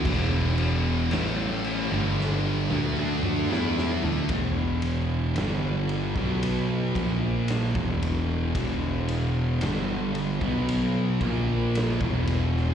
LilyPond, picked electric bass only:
\new Staff \with { instrumentName = "Picked electric bass" } { \clef bass \time 4/4 \key e \phrygian \tempo 4 = 56 e,,4 a,,8. g,,8. d,16 d,8 e,8 d,16 | e,,4 g,,8. b,,8. ais,,8. e,,8. | e,,4 g,,8. b,,8. ais,,8. e,,8. | }